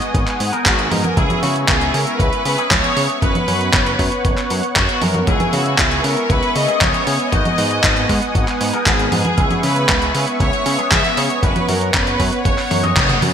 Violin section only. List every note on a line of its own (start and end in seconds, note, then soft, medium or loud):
0.00 0.11 D#5 loud
0.66 0.90 F#4 medium
0.91 1.17 A#4 medium
1.17 1.43 G#4 medium
1.43 1.54 F#4 medium
1.69 1.92 G#4 medium
1.94 2.20 A#4 medium
2.20 2.44 B4 loud
2.45 2.69 B4 loud
2.71 3.19 C#5 loud
3.22 4.21 B4 loud
4.76 5.00 F#4 medium
5.02 5.27 A#4 medium
5.28 5.51 G#4 medium
5.53 5.79 F#4 medium
5.79 6.04 G#4 loud
6.05 6.30 A#4 loud
6.30 6.56 B4 loud
6.56 6.80 D#5 loud
6.82 7.33 C#5 loud
7.33 8.35 D#5 loud
8.87 9.10 G#4 medium
9.12 9.60 G#4 medium
9.63 10.13 B4 loud
10.15 10.26 B4 medium
10.40 10.88 C#5 loud
10.92 11.17 E5 loud
11.17 11.43 C#5 loud
11.43 11.67 B4 loud
11.68 11.94 A#4 loud
11.94 12.42 B4 loud
12.45 13.22 C#5 medium